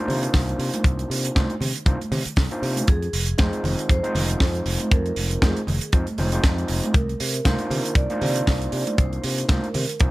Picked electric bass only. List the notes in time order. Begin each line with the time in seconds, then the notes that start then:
0.08 C3
0.34 C2
0.59 C3
0.84 C2
1.10 C3
1.36 C2
1.61 C3
1.86 C2
2.12 C3
2.26 muted picked electric bass stroke
2.37 C2
2.62 C3
2.88 F2
3.13 F1
3.39 F2
3.64 F1
3.89 F2
4.15 F1
4.41 F2
4.66 F1
4.91 F2
5.17 F1
5.42 F2
5.68 F1
5.93 F2
6.19 F1
6.44 F2
6.70 F1
6.94 C2
7.20 C3
7.45 C2
7.71 C3
7.95 C2
8.22 C3
8.47 C2
8.73 C3
8.98 C2
9.24 C3
9.49 C2
9.75 C3
10.01 C2